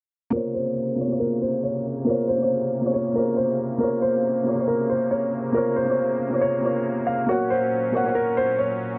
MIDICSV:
0, 0, Header, 1, 4, 480
1, 0, Start_track
1, 0, Key_signature, -5, "minor"
1, 0, Tempo, 434783
1, 363, Time_signature, 4, 2, 24, 8
1, 9918, End_track
2, 0, Start_track
2, 0, Title_t, "Grand piano"
2, 0, Program_c, 0, 0
2, 364, Note_on_c, 0, 70, 103
2, 579, Note_off_c, 0, 70, 0
2, 603, Note_on_c, 0, 72, 86
2, 1280, Note_off_c, 0, 72, 0
2, 1324, Note_on_c, 0, 70, 87
2, 1539, Note_off_c, 0, 70, 0
2, 1566, Note_on_c, 0, 72, 83
2, 1780, Note_off_c, 0, 72, 0
2, 1805, Note_on_c, 0, 73, 77
2, 2020, Note_off_c, 0, 73, 0
2, 2283, Note_on_c, 0, 70, 87
2, 2499, Note_off_c, 0, 70, 0
2, 2521, Note_on_c, 0, 72, 79
2, 3199, Note_off_c, 0, 72, 0
2, 3243, Note_on_c, 0, 73, 80
2, 3459, Note_off_c, 0, 73, 0
2, 3483, Note_on_c, 0, 70, 80
2, 3699, Note_off_c, 0, 70, 0
2, 3719, Note_on_c, 0, 72, 71
2, 3937, Note_off_c, 0, 72, 0
2, 4201, Note_on_c, 0, 70, 89
2, 4417, Note_off_c, 0, 70, 0
2, 4439, Note_on_c, 0, 72, 89
2, 5118, Note_off_c, 0, 72, 0
2, 5164, Note_on_c, 0, 70, 82
2, 5379, Note_off_c, 0, 70, 0
2, 5405, Note_on_c, 0, 72, 73
2, 5620, Note_off_c, 0, 72, 0
2, 5640, Note_on_c, 0, 73, 82
2, 5857, Note_off_c, 0, 73, 0
2, 6124, Note_on_c, 0, 70, 94
2, 6339, Note_off_c, 0, 70, 0
2, 6362, Note_on_c, 0, 72, 82
2, 7039, Note_off_c, 0, 72, 0
2, 7081, Note_on_c, 0, 73, 85
2, 7759, Note_off_c, 0, 73, 0
2, 7802, Note_on_c, 0, 77, 77
2, 8018, Note_off_c, 0, 77, 0
2, 8046, Note_on_c, 0, 66, 89
2, 8260, Note_off_c, 0, 66, 0
2, 8284, Note_on_c, 0, 72, 79
2, 8960, Note_off_c, 0, 72, 0
2, 8997, Note_on_c, 0, 70, 88
2, 9216, Note_off_c, 0, 70, 0
2, 9243, Note_on_c, 0, 72, 87
2, 9459, Note_off_c, 0, 72, 0
2, 9481, Note_on_c, 0, 73, 72
2, 9698, Note_off_c, 0, 73, 0
2, 9918, End_track
3, 0, Start_track
3, 0, Title_t, "Felt piano"
3, 0, Program_c, 1, 0
3, 336, Note_on_c, 1, 58, 96
3, 353, Note_on_c, 1, 65, 86
3, 371, Note_on_c, 1, 72, 94
3, 390, Note_on_c, 1, 73, 108
3, 602, Control_c, 1, 64, 127
3, 800, Note_off_c, 1, 58, 0
3, 809, Note_off_c, 1, 65, 0
3, 818, Note_off_c, 1, 72, 0
3, 827, Note_off_c, 1, 73, 0
3, 1054, Note_on_c, 1, 58, 72
3, 1072, Note_on_c, 1, 65, 68
3, 1090, Note_on_c, 1, 72, 68
3, 1108, Note_on_c, 1, 73, 83
3, 1148, Note_off_c, 1, 58, 0
3, 1157, Note_off_c, 1, 65, 0
3, 1166, Note_off_c, 1, 72, 0
3, 1175, Note_off_c, 1, 73, 0
3, 1183, Note_on_c, 1, 58, 74
3, 1201, Note_on_c, 1, 65, 69
3, 1219, Note_on_c, 1, 72, 69
3, 1237, Note_on_c, 1, 73, 82
3, 1788, Note_off_c, 1, 58, 0
3, 1797, Note_off_c, 1, 65, 0
3, 1806, Note_off_c, 1, 72, 0
3, 1815, Note_off_c, 1, 73, 0
3, 2258, Note_on_c, 1, 58, 101
3, 2276, Note_on_c, 1, 65, 89
3, 2294, Note_on_c, 1, 72, 83
3, 2312, Note_on_c, 1, 73, 100
3, 2496, Note_off_c, 1, 58, 0
3, 2505, Note_off_c, 1, 65, 0
3, 2514, Note_off_c, 1, 72, 0
3, 2523, Note_off_c, 1, 73, 0
3, 2622, Note_on_c, 1, 58, 63
3, 2640, Note_on_c, 1, 65, 58
3, 2658, Note_on_c, 1, 72, 62
3, 2676, Note_on_c, 1, 73, 72
3, 2932, Note_off_c, 1, 58, 0
3, 2941, Note_off_c, 1, 65, 0
3, 2950, Note_off_c, 1, 72, 0
3, 2959, Note_off_c, 1, 73, 0
3, 3103, Note_on_c, 1, 58, 78
3, 3121, Note_on_c, 1, 65, 64
3, 3139, Note_on_c, 1, 72, 73
3, 3157, Note_on_c, 1, 73, 87
3, 3340, Note_off_c, 1, 58, 0
3, 3349, Note_off_c, 1, 65, 0
3, 3358, Note_off_c, 1, 72, 0
3, 3367, Note_off_c, 1, 73, 0
3, 3458, Note_on_c, 1, 58, 67
3, 3475, Note_on_c, 1, 65, 71
3, 3493, Note_on_c, 1, 72, 70
3, 3511, Note_on_c, 1, 73, 79
3, 3921, Note_off_c, 1, 58, 0
3, 3930, Note_off_c, 1, 65, 0
3, 3939, Note_off_c, 1, 72, 0
3, 3948, Note_off_c, 1, 73, 0
3, 4176, Note_on_c, 1, 58, 106
3, 4194, Note_on_c, 1, 65, 88
3, 4212, Note_on_c, 1, 72, 86
3, 4230, Note_on_c, 1, 73, 102
3, 4640, Note_off_c, 1, 58, 0
3, 4649, Note_off_c, 1, 65, 0
3, 4658, Note_off_c, 1, 72, 0
3, 4667, Note_off_c, 1, 73, 0
3, 4896, Note_on_c, 1, 58, 72
3, 4914, Note_on_c, 1, 65, 67
3, 4933, Note_on_c, 1, 72, 69
3, 4950, Note_on_c, 1, 73, 77
3, 4989, Note_off_c, 1, 58, 0
3, 4998, Note_off_c, 1, 65, 0
3, 5007, Note_off_c, 1, 72, 0
3, 5016, Note_off_c, 1, 73, 0
3, 5024, Note_on_c, 1, 58, 78
3, 5043, Note_on_c, 1, 65, 69
3, 5061, Note_on_c, 1, 72, 69
3, 5079, Note_on_c, 1, 73, 73
3, 5629, Note_off_c, 1, 58, 0
3, 5638, Note_off_c, 1, 65, 0
3, 5647, Note_off_c, 1, 72, 0
3, 5656, Note_off_c, 1, 73, 0
3, 6096, Note_on_c, 1, 58, 100
3, 6114, Note_on_c, 1, 65, 83
3, 6132, Note_on_c, 1, 72, 83
3, 6149, Note_on_c, 1, 73, 98
3, 6335, Note_off_c, 1, 58, 0
3, 6344, Note_off_c, 1, 65, 0
3, 6353, Note_off_c, 1, 72, 0
3, 6362, Note_off_c, 1, 73, 0
3, 6463, Note_on_c, 1, 58, 71
3, 6481, Note_on_c, 1, 65, 61
3, 6499, Note_on_c, 1, 72, 59
3, 6517, Note_on_c, 1, 73, 74
3, 6772, Note_off_c, 1, 58, 0
3, 6781, Note_off_c, 1, 65, 0
3, 6790, Note_off_c, 1, 72, 0
3, 6799, Note_off_c, 1, 73, 0
3, 6944, Note_on_c, 1, 58, 73
3, 6962, Note_on_c, 1, 65, 72
3, 6980, Note_on_c, 1, 72, 69
3, 6998, Note_on_c, 1, 73, 83
3, 7181, Note_off_c, 1, 58, 0
3, 7190, Note_off_c, 1, 65, 0
3, 7199, Note_off_c, 1, 72, 0
3, 7208, Note_off_c, 1, 73, 0
3, 7295, Note_on_c, 1, 58, 72
3, 7313, Note_on_c, 1, 65, 66
3, 7331, Note_on_c, 1, 70, 69
3, 7349, Note_on_c, 1, 73, 80
3, 7760, Note_off_c, 1, 58, 0
3, 7769, Note_off_c, 1, 65, 0
3, 7778, Note_off_c, 1, 70, 0
3, 7787, Note_off_c, 1, 73, 0
3, 8015, Note_on_c, 1, 58, 95
3, 8032, Note_on_c, 1, 70, 81
3, 8051, Note_on_c, 1, 73, 88
3, 8055, Control_c, 1, 64, 0
3, 8069, Note_on_c, 1, 78, 95
3, 8257, Control_c, 1, 64, 127
3, 8479, Note_off_c, 1, 58, 0
3, 8488, Note_off_c, 1, 70, 0
3, 8497, Note_off_c, 1, 73, 0
3, 8507, Note_off_c, 1, 78, 0
3, 8738, Note_on_c, 1, 58, 72
3, 8756, Note_on_c, 1, 70, 67
3, 8774, Note_on_c, 1, 73, 70
3, 8792, Note_on_c, 1, 78, 88
3, 8830, Note_off_c, 1, 58, 0
3, 8839, Note_off_c, 1, 70, 0
3, 8848, Note_off_c, 1, 73, 0
3, 8857, Note_off_c, 1, 78, 0
3, 8864, Note_on_c, 1, 58, 72
3, 8883, Note_on_c, 1, 70, 66
3, 8901, Note_on_c, 1, 73, 68
3, 8918, Note_on_c, 1, 78, 85
3, 9469, Note_off_c, 1, 58, 0
3, 9478, Note_off_c, 1, 70, 0
3, 9487, Note_off_c, 1, 73, 0
3, 9496, Note_off_c, 1, 78, 0
3, 9918, End_track
4, 0, Start_track
4, 0, Title_t, "Pipe organ"
4, 0, Program_c, 2, 19
4, 363, Note_on_c, 2, 48, 76
4, 363, Note_on_c, 2, 49, 68
4, 363, Note_on_c, 2, 58, 62
4, 7999, Note_off_c, 2, 48, 0
4, 7999, Note_off_c, 2, 49, 0
4, 7999, Note_off_c, 2, 58, 0
4, 8043, Note_on_c, 2, 46, 66
4, 8043, Note_on_c, 2, 54, 63
4, 8043, Note_on_c, 2, 61, 73
4, 9918, Note_off_c, 2, 46, 0
4, 9918, Note_off_c, 2, 54, 0
4, 9918, Note_off_c, 2, 61, 0
4, 9918, End_track
0, 0, End_of_file